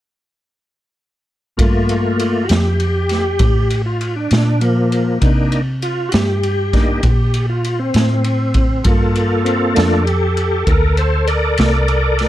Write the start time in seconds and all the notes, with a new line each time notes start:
1.57 G2 A3 A#3 F4, kick, ride
1.89 ride
2.19 F4, ride
2.45 F#4
2.49 F2 G4, snare, ride
2.80 ride
3.09 snare, ride
3.39 A2, kick, ride
3.70 ride
3.86 F4
4.01 ride
4.16 D4
4.31 A#2, snare, ride
4.61 F3 A#3, ride
4.92 ride
5.20 C3 A#3 D4 D#4, kick, ride
5.52 ride
5.82 F4, ride
6.09 F#4, ride
6.14 G2 G4, snare
6.43 ride
6.73 A#3 D4 D#4, kick, snare, ride
7.03 A#2, kick, ride
7.34 ride
7.49 F4
7.64 ride
7.79 C4
7.94 A2, snare, ride
8.24 C4, ride
8.54 kick, ride
8.84 G2 A#3 F4 A4, kick, ride
9.16 ride
9.44 C4, ride
9.74 F2 A3 A#3 D4 F4, snare, ride
10.05 G4, ride
10.37 ride
10.67 D2 A#4, kick, ride
10.97 C5, ride
11.27 A#4 D5, ride
11.58 C2, snare, ride
11.88 ride
12.19 snare, ride